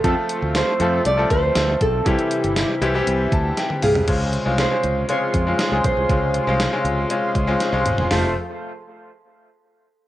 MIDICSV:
0, 0, Header, 1, 7, 480
1, 0, Start_track
1, 0, Tempo, 504202
1, 41, Time_signature, 4, 2, 24, 8
1, 9595, End_track
2, 0, Start_track
2, 0, Title_t, "Nylon-string guitar"
2, 0, Program_c, 0, 24
2, 0, Note_on_c, 0, 69, 100
2, 530, Note_on_c, 0, 72, 94
2, 545, Note_off_c, 0, 69, 0
2, 1007, Note_off_c, 0, 72, 0
2, 1011, Note_on_c, 0, 74, 101
2, 1242, Note_off_c, 0, 74, 0
2, 1246, Note_on_c, 0, 72, 99
2, 1731, Note_off_c, 0, 72, 0
2, 1735, Note_on_c, 0, 69, 91
2, 1952, Note_off_c, 0, 69, 0
2, 1962, Note_on_c, 0, 64, 81
2, 3364, Note_off_c, 0, 64, 0
2, 3651, Note_on_c, 0, 68, 99
2, 4328, Note_off_c, 0, 68, 0
2, 4378, Note_on_c, 0, 72, 94
2, 4848, Note_off_c, 0, 72, 0
2, 4852, Note_on_c, 0, 73, 102
2, 5528, Note_off_c, 0, 73, 0
2, 5572, Note_on_c, 0, 72, 88
2, 7208, Note_off_c, 0, 72, 0
2, 7726, Note_on_c, 0, 69, 85
2, 7947, Note_off_c, 0, 69, 0
2, 9595, End_track
3, 0, Start_track
3, 0, Title_t, "Analog polysynth"
3, 0, Program_c, 1, 90
3, 39, Note_on_c, 1, 69, 113
3, 41, Note_on_c, 1, 60, 105
3, 41, Note_on_c, 1, 65, 100
3, 142, Note_off_c, 1, 69, 0
3, 143, Note_off_c, 1, 60, 0
3, 143, Note_off_c, 1, 65, 0
3, 760, Note_on_c, 1, 60, 101
3, 760, Note_on_c, 1, 65, 98
3, 760, Note_on_c, 1, 69, 111
3, 965, Note_off_c, 1, 60, 0
3, 965, Note_off_c, 1, 65, 0
3, 965, Note_off_c, 1, 69, 0
3, 4843, Note_on_c, 1, 65, 71
3, 4843, Note_on_c, 1, 68, 70
3, 4843, Note_on_c, 1, 84, 79
3, 7684, Note_off_c, 1, 65, 0
3, 7684, Note_off_c, 1, 68, 0
3, 7684, Note_off_c, 1, 84, 0
3, 7715, Note_on_c, 1, 65, 88
3, 7716, Note_on_c, 1, 72, 100
3, 7718, Note_on_c, 1, 57, 90
3, 7941, Note_off_c, 1, 65, 0
3, 7941, Note_off_c, 1, 72, 0
3, 7942, Note_off_c, 1, 57, 0
3, 9595, End_track
4, 0, Start_track
4, 0, Title_t, "Analog synth pad"
4, 0, Program_c, 2, 89
4, 0, Note_on_c, 2, 65, 88
4, 44, Note_on_c, 2, 57, 79
4, 45, Note_on_c, 2, 60, 77
4, 1923, Note_off_c, 2, 65, 0
4, 1943, Note_off_c, 2, 57, 0
4, 1951, Note_on_c, 2, 64, 78
4, 1953, Note_on_c, 2, 48, 82
4, 1953, Note_on_c, 2, 67, 92
4, 3845, Note_off_c, 2, 60, 0
4, 3857, Note_off_c, 2, 64, 0
4, 3858, Note_off_c, 2, 48, 0
4, 3858, Note_off_c, 2, 67, 0
4, 3875, Note_on_c, 2, 65, 86
4, 3876, Note_on_c, 2, 48, 71
4, 3876, Note_on_c, 2, 49, 74
4, 3877, Note_on_c, 2, 56, 71
4, 7680, Note_off_c, 2, 49, 0
4, 7680, Note_off_c, 2, 65, 0
4, 7681, Note_off_c, 2, 48, 0
4, 7681, Note_off_c, 2, 56, 0
4, 7718, Note_on_c, 2, 72, 85
4, 7719, Note_on_c, 2, 53, 73
4, 7719, Note_on_c, 2, 65, 70
4, 7722, Note_on_c, 2, 69, 67
4, 7942, Note_off_c, 2, 72, 0
4, 7943, Note_off_c, 2, 53, 0
4, 7943, Note_off_c, 2, 65, 0
4, 7945, Note_off_c, 2, 69, 0
4, 9595, End_track
5, 0, Start_track
5, 0, Title_t, "Grand piano"
5, 0, Program_c, 3, 0
5, 0, Control_c, 3, 64, 127
5, 36, Note_on_c, 3, 53, 79
5, 39, Note_on_c, 3, 57, 74
5, 40, Note_on_c, 3, 60, 71
5, 44, Note_on_c, 3, 65, 73
5, 47, Note_on_c, 3, 69, 84
5, 54, Control_c, 3, 64, 0
5, 220, Control_c, 3, 64, 127
5, 598, Note_off_c, 3, 53, 0
5, 599, Note_off_c, 3, 57, 0
5, 600, Note_off_c, 3, 60, 0
5, 602, Note_off_c, 3, 65, 0
5, 603, Note_off_c, 3, 69, 0
5, 762, Note_on_c, 3, 53, 77
5, 769, Note_on_c, 3, 57, 72
5, 770, Note_on_c, 3, 60, 69
5, 771, Note_on_c, 3, 65, 69
5, 776, Note_on_c, 3, 69, 84
5, 1041, Note_off_c, 3, 53, 0
5, 1045, Note_off_c, 3, 57, 0
5, 1045, Note_off_c, 3, 60, 0
5, 1046, Note_off_c, 3, 65, 0
5, 1048, Note_off_c, 3, 69, 0
5, 1116, Note_on_c, 3, 53, 76
5, 1120, Note_on_c, 3, 57, 68
5, 1122, Note_on_c, 3, 60, 72
5, 1126, Note_on_c, 3, 65, 68
5, 1131, Note_on_c, 3, 69, 90
5, 1771, Note_off_c, 3, 53, 0
5, 1773, Note_off_c, 3, 57, 0
5, 1774, Note_off_c, 3, 60, 0
5, 1776, Note_off_c, 3, 65, 0
5, 1779, Note_off_c, 3, 69, 0
5, 1956, Note_on_c, 3, 52, 79
5, 1960, Note_on_c, 3, 55, 75
5, 1962, Note_on_c, 3, 60, 67
5, 1965, Note_on_c, 3, 64, 70
5, 1967, Note_on_c, 3, 67, 87
5, 1974, Control_c, 3, 64, 0
5, 2152, Control_c, 3, 64, 127
5, 2518, Note_off_c, 3, 52, 0
5, 2520, Note_off_c, 3, 55, 0
5, 2521, Note_off_c, 3, 60, 0
5, 2523, Note_off_c, 3, 64, 0
5, 2524, Note_off_c, 3, 67, 0
5, 2680, Note_on_c, 3, 52, 94
5, 2681, Note_on_c, 3, 55, 81
5, 2683, Note_on_c, 3, 60, 85
5, 2685, Note_on_c, 3, 64, 84
5, 2689, Note_on_c, 3, 67, 95
5, 2774, Note_off_c, 3, 52, 0
5, 2774, Note_off_c, 3, 55, 0
5, 2775, Note_off_c, 3, 60, 0
5, 2776, Note_off_c, 3, 64, 0
5, 2778, Note_off_c, 3, 67, 0
5, 2798, Note_on_c, 3, 52, 93
5, 2800, Note_on_c, 3, 55, 84
5, 2803, Note_on_c, 3, 60, 86
5, 2807, Note_on_c, 3, 64, 86
5, 2811, Note_on_c, 3, 67, 101
5, 3167, Note_on_c, 3, 81, 77
5, 3388, Note_off_c, 3, 81, 0
5, 3408, Note_on_c, 3, 79, 70
5, 3545, Note_off_c, 3, 52, 0
5, 3547, Note_off_c, 3, 55, 0
5, 3548, Note_off_c, 3, 60, 0
5, 3550, Note_off_c, 3, 64, 0
5, 3552, Note_off_c, 3, 67, 0
5, 3628, Note_off_c, 3, 79, 0
5, 3644, Note_on_c, 3, 77, 76
5, 3866, Note_off_c, 3, 77, 0
5, 3880, Note_on_c, 3, 56, 68
5, 3885, Note_on_c, 3, 60, 66
5, 3887, Note_on_c, 3, 61, 66
5, 3893, Note_on_c, 3, 65, 82
5, 3894, Control_c, 3, 64, 0
5, 4057, Control_c, 3, 64, 127
5, 4160, Note_off_c, 3, 56, 0
5, 4163, Note_off_c, 3, 60, 0
5, 4164, Note_off_c, 3, 61, 0
5, 4167, Note_off_c, 3, 65, 0
5, 4239, Note_on_c, 3, 56, 72
5, 4246, Note_on_c, 3, 60, 63
5, 4248, Note_on_c, 3, 61, 67
5, 4251, Note_on_c, 3, 65, 80
5, 4426, Note_off_c, 3, 56, 0
5, 4430, Note_off_c, 3, 60, 0
5, 4431, Note_off_c, 3, 61, 0
5, 4433, Note_off_c, 3, 65, 0
5, 4483, Note_on_c, 3, 56, 65
5, 4483, Note_on_c, 3, 60, 65
5, 4487, Note_on_c, 3, 61, 63
5, 4491, Note_on_c, 3, 65, 72
5, 4762, Note_off_c, 3, 56, 0
5, 4762, Note_off_c, 3, 60, 0
5, 4764, Note_off_c, 3, 61, 0
5, 4766, Note_off_c, 3, 65, 0
5, 4843, Note_on_c, 3, 56, 70
5, 4843, Note_on_c, 3, 60, 58
5, 4851, Note_on_c, 3, 65, 76
5, 4852, Note_on_c, 3, 61, 61
5, 5122, Note_off_c, 3, 56, 0
5, 5122, Note_off_c, 3, 60, 0
5, 5126, Note_off_c, 3, 61, 0
5, 5126, Note_off_c, 3, 65, 0
5, 5205, Note_on_c, 3, 56, 74
5, 5209, Note_on_c, 3, 60, 69
5, 5214, Note_on_c, 3, 61, 71
5, 5217, Note_on_c, 3, 65, 81
5, 5390, Note_off_c, 3, 56, 0
5, 5391, Note_off_c, 3, 60, 0
5, 5394, Note_off_c, 3, 61, 0
5, 5396, Note_off_c, 3, 65, 0
5, 5444, Note_on_c, 3, 56, 77
5, 5449, Note_on_c, 3, 60, 69
5, 5449, Note_on_c, 3, 61, 67
5, 5452, Note_on_c, 3, 68, 81
5, 5722, Note_off_c, 3, 56, 0
5, 5725, Note_off_c, 3, 60, 0
5, 5725, Note_off_c, 3, 61, 0
5, 5726, Note_off_c, 3, 68, 0
5, 5802, Note_on_c, 3, 56, 70
5, 5806, Note_on_c, 3, 60, 65
5, 5810, Note_on_c, 3, 61, 69
5, 5815, Note_on_c, 3, 65, 82
5, 6081, Note_off_c, 3, 56, 0
5, 6083, Note_off_c, 3, 60, 0
5, 6085, Note_off_c, 3, 61, 0
5, 6088, Note_off_c, 3, 65, 0
5, 6161, Note_on_c, 3, 56, 92
5, 6164, Note_on_c, 3, 60, 80
5, 6169, Note_on_c, 3, 61, 80
5, 6175, Note_on_c, 3, 65, 101
5, 6348, Note_off_c, 3, 56, 0
5, 6349, Note_off_c, 3, 60, 0
5, 6351, Note_off_c, 3, 61, 0
5, 6354, Note_off_c, 3, 65, 0
5, 6402, Note_on_c, 3, 56, 87
5, 6405, Note_on_c, 3, 60, 83
5, 6411, Note_on_c, 3, 61, 77
5, 6413, Note_on_c, 3, 65, 91
5, 6681, Note_off_c, 3, 56, 0
5, 6683, Note_off_c, 3, 60, 0
5, 6686, Note_off_c, 3, 61, 0
5, 6687, Note_off_c, 3, 65, 0
5, 6760, Note_on_c, 3, 56, 84
5, 6761, Note_on_c, 3, 60, 77
5, 6768, Note_on_c, 3, 61, 75
5, 6770, Note_on_c, 3, 65, 92
5, 7040, Note_off_c, 3, 56, 0
5, 7041, Note_off_c, 3, 60, 0
5, 7044, Note_off_c, 3, 61, 0
5, 7045, Note_off_c, 3, 65, 0
5, 7114, Note_on_c, 3, 56, 93
5, 7117, Note_on_c, 3, 60, 83
5, 7122, Note_on_c, 3, 61, 91
5, 7125, Note_on_c, 3, 65, 101
5, 7304, Note_off_c, 3, 56, 0
5, 7306, Note_off_c, 3, 60, 0
5, 7308, Note_off_c, 3, 61, 0
5, 7309, Note_off_c, 3, 65, 0
5, 7355, Note_on_c, 3, 56, 92
5, 7357, Note_on_c, 3, 60, 85
5, 7362, Note_on_c, 3, 61, 80
5, 7366, Note_on_c, 3, 65, 101
5, 7638, Note_off_c, 3, 56, 0
5, 7639, Note_off_c, 3, 60, 0
5, 7641, Note_off_c, 3, 61, 0
5, 7643, Note_off_c, 3, 65, 0
5, 7716, Note_on_c, 3, 60, 77
5, 7719, Note_on_c, 3, 53, 81
5, 7720, Note_on_c, 3, 57, 75
5, 7720, Note_on_c, 3, 65, 85
5, 7733, Control_c, 3, 64, 0
5, 7942, Note_off_c, 3, 60, 0
5, 7943, Note_off_c, 3, 53, 0
5, 7944, Note_off_c, 3, 57, 0
5, 7944, Note_off_c, 3, 65, 0
5, 9595, End_track
6, 0, Start_track
6, 0, Title_t, "Fretless electric bass"
6, 0, Program_c, 4, 35
6, 38, Note_on_c, 4, 41, 110
6, 129, Note_off_c, 4, 41, 0
6, 402, Note_on_c, 4, 38, 90
6, 582, Note_off_c, 4, 38, 0
6, 760, Note_on_c, 4, 41, 93
6, 940, Note_off_c, 4, 41, 0
6, 1002, Note_on_c, 4, 36, 100
6, 1182, Note_off_c, 4, 36, 0
6, 1240, Note_on_c, 4, 38, 91
6, 1420, Note_off_c, 4, 38, 0
6, 1484, Note_on_c, 4, 38, 99
6, 1663, Note_off_c, 4, 38, 0
6, 1721, Note_on_c, 4, 35, 96
6, 1901, Note_off_c, 4, 35, 0
6, 1961, Note_on_c, 4, 36, 114
6, 2051, Note_off_c, 4, 36, 0
6, 2325, Note_on_c, 4, 31, 90
6, 2503, Note_off_c, 4, 31, 0
6, 2679, Note_on_c, 4, 36, 96
6, 2860, Note_off_c, 4, 36, 0
6, 2924, Note_on_c, 4, 36, 105
6, 3103, Note_off_c, 4, 36, 0
6, 3160, Note_on_c, 4, 38, 93
6, 3340, Note_off_c, 4, 38, 0
6, 3641, Note_on_c, 4, 36, 94
6, 3821, Note_off_c, 4, 36, 0
6, 3882, Note_on_c, 4, 37, 99
6, 4152, Note_off_c, 4, 37, 0
6, 4245, Note_on_c, 4, 36, 81
6, 4424, Note_off_c, 4, 36, 0
6, 4605, Note_on_c, 4, 37, 91
6, 4784, Note_off_c, 4, 37, 0
6, 5081, Note_on_c, 4, 41, 82
6, 5261, Note_off_c, 4, 41, 0
6, 5442, Note_on_c, 4, 37, 78
6, 5532, Note_off_c, 4, 37, 0
6, 5561, Note_on_c, 4, 35, 85
6, 5651, Note_off_c, 4, 35, 0
6, 5682, Note_on_c, 4, 36, 79
6, 5772, Note_off_c, 4, 36, 0
6, 5800, Note_on_c, 4, 37, 101
6, 6070, Note_off_c, 4, 37, 0
6, 6160, Note_on_c, 4, 36, 85
6, 6340, Note_off_c, 4, 36, 0
6, 6516, Note_on_c, 4, 37, 90
6, 6698, Note_off_c, 4, 37, 0
6, 6997, Note_on_c, 4, 37, 87
6, 7178, Note_off_c, 4, 37, 0
6, 7354, Note_on_c, 4, 36, 96
6, 7446, Note_off_c, 4, 36, 0
6, 7479, Note_on_c, 4, 27, 87
6, 7570, Note_off_c, 4, 27, 0
6, 7596, Note_on_c, 4, 28, 87
6, 7688, Note_off_c, 4, 28, 0
6, 7716, Note_on_c, 4, 29, 102
6, 7942, Note_off_c, 4, 29, 0
6, 9595, End_track
7, 0, Start_track
7, 0, Title_t, "Drums"
7, 40, Note_on_c, 9, 42, 92
7, 41, Note_on_c, 9, 36, 119
7, 135, Note_off_c, 9, 42, 0
7, 136, Note_off_c, 9, 36, 0
7, 279, Note_on_c, 9, 42, 73
7, 374, Note_off_c, 9, 42, 0
7, 521, Note_on_c, 9, 54, 67
7, 522, Note_on_c, 9, 38, 117
7, 522, Note_on_c, 9, 42, 84
7, 617, Note_off_c, 9, 38, 0
7, 617, Note_off_c, 9, 42, 0
7, 617, Note_off_c, 9, 54, 0
7, 760, Note_on_c, 9, 42, 66
7, 855, Note_off_c, 9, 42, 0
7, 1001, Note_on_c, 9, 42, 91
7, 1097, Note_off_c, 9, 42, 0
7, 1242, Note_on_c, 9, 36, 99
7, 1243, Note_on_c, 9, 42, 77
7, 1337, Note_off_c, 9, 36, 0
7, 1339, Note_off_c, 9, 42, 0
7, 1480, Note_on_c, 9, 38, 127
7, 1480, Note_on_c, 9, 42, 92
7, 1481, Note_on_c, 9, 54, 74
7, 1575, Note_off_c, 9, 38, 0
7, 1575, Note_off_c, 9, 42, 0
7, 1577, Note_off_c, 9, 54, 0
7, 1722, Note_on_c, 9, 42, 77
7, 1724, Note_on_c, 9, 36, 97
7, 1817, Note_off_c, 9, 42, 0
7, 1819, Note_off_c, 9, 36, 0
7, 1961, Note_on_c, 9, 42, 87
7, 1962, Note_on_c, 9, 36, 122
7, 2057, Note_off_c, 9, 36, 0
7, 2057, Note_off_c, 9, 42, 0
7, 2082, Note_on_c, 9, 42, 62
7, 2177, Note_off_c, 9, 42, 0
7, 2199, Note_on_c, 9, 42, 75
7, 2294, Note_off_c, 9, 42, 0
7, 2322, Note_on_c, 9, 42, 59
7, 2418, Note_off_c, 9, 42, 0
7, 2440, Note_on_c, 9, 54, 66
7, 2441, Note_on_c, 9, 38, 116
7, 2441, Note_on_c, 9, 42, 85
7, 2536, Note_off_c, 9, 38, 0
7, 2536, Note_off_c, 9, 42, 0
7, 2536, Note_off_c, 9, 54, 0
7, 2684, Note_on_c, 9, 42, 67
7, 2780, Note_off_c, 9, 42, 0
7, 2924, Note_on_c, 9, 42, 90
7, 3019, Note_off_c, 9, 42, 0
7, 3161, Note_on_c, 9, 36, 93
7, 3163, Note_on_c, 9, 42, 72
7, 3257, Note_off_c, 9, 36, 0
7, 3258, Note_off_c, 9, 42, 0
7, 3401, Note_on_c, 9, 42, 93
7, 3403, Note_on_c, 9, 38, 64
7, 3496, Note_off_c, 9, 42, 0
7, 3498, Note_off_c, 9, 38, 0
7, 3522, Note_on_c, 9, 48, 72
7, 3618, Note_off_c, 9, 48, 0
7, 3640, Note_on_c, 9, 45, 104
7, 3640, Note_on_c, 9, 46, 75
7, 3735, Note_off_c, 9, 45, 0
7, 3735, Note_off_c, 9, 46, 0
7, 3763, Note_on_c, 9, 43, 102
7, 3859, Note_off_c, 9, 43, 0
7, 3880, Note_on_c, 9, 42, 82
7, 3880, Note_on_c, 9, 49, 93
7, 3882, Note_on_c, 9, 36, 109
7, 3975, Note_off_c, 9, 49, 0
7, 3976, Note_off_c, 9, 42, 0
7, 3977, Note_off_c, 9, 36, 0
7, 4120, Note_on_c, 9, 42, 65
7, 4215, Note_off_c, 9, 42, 0
7, 4362, Note_on_c, 9, 38, 112
7, 4362, Note_on_c, 9, 42, 80
7, 4457, Note_off_c, 9, 38, 0
7, 4457, Note_off_c, 9, 42, 0
7, 4602, Note_on_c, 9, 42, 62
7, 4697, Note_off_c, 9, 42, 0
7, 4843, Note_on_c, 9, 42, 80
7, 4939, Note_off_c, 9, 42, 0
7, 5081, Note_on_c, 9, 36, 86
7, 5082, Note_on_c, 9, 42, 69
7, 5177, Note_off_c, 9, 36, 0
7, 5177, Note_off_c, 9, 42, 0
7, 5321, Note_on_c, 9, 38, 123
7, 5321, Note_on_c, 9, 42, 85
7, 5416, Note_off_c, 9, 38, 0
7, 5416, Note_off_c, 9, 42, 0
7, 5562, Note_on_c, 9, 42, 75
7, 5565, Note_on_c, 9, 36, 96
7, 5657, Note_off_c, 9, 42, 0
7, 5660, Note_off_c, 9, 36, 0
7, 5802, Note_on_c, 9, 36, 115
7, 5803, Note_on_c, 9, 42, 83
7, 5897, Note_off_c, 9, 36, 0
7, 5898, Note_off_c, 9, 42, 0
7, 6038, Note_on_c, 9, 42, 65
7, 6133, Note_off_c, 9, 42, 0
7, 6281, Note_on_c, 9, 38, 114
7, 6281, Note_on_c, 9, 42, 80
7, 6281, Note_on_c, 9, 54, 60
7, 6376, Note_off_c, 9, 54, 0
7, 6377, Note_off_c, 9, 38, 0
7, 6377, Note_off_c, 9, 42, 0
7, 6522, Note_on_c, 9, 42, 64
7, 6617, Note_off_c, 9, 42, 0
7, 6759, Note_on_c, 9, 42, 88
7, 6854, Note_off_c, 9, 42, 0
7, 6998, Note_on_c, 9, 36, 88
7, 6999, Note_on_c, 9, 42, 68
7, 7093, Note_off_c, 9, 36, 0
7, 7094, Note_off_c, 9, 42, 0
7, 7238, Note_on_c, 9, 42, 91
7, 7240, Note_on_c, 9, 38, 61
7, 7333, Note_off_c, 9, 42, 0
7, 7335, Note_off_c, 9, 38, 0
7, 7478, Note_on_c, 9, 42, 75
7, 7479, Note_on_c, 9, 45, 90
7, 7574, Note_off_c, 9, 42, 0
7, 7574, Note_off_c, 9, 45, 0
7, 7598, Note_on_c, 9, 43, 93
7, 7693, Note_off_c, 9, 43, 0
7, 7718, Note_on_c, 9, 38, 104
7, 7718, Note_on_c, 9, 43, 105
7, 7718, Note_on_c, 9, 46, 95
7, 7813, Note_off_c, 9, 38, 0
7, 7813, Note_off_c, 9, 43, 0
7, 7813, Note_off_c, 9, 46, 0
7, 9595, End_track
0, 0, End_of_file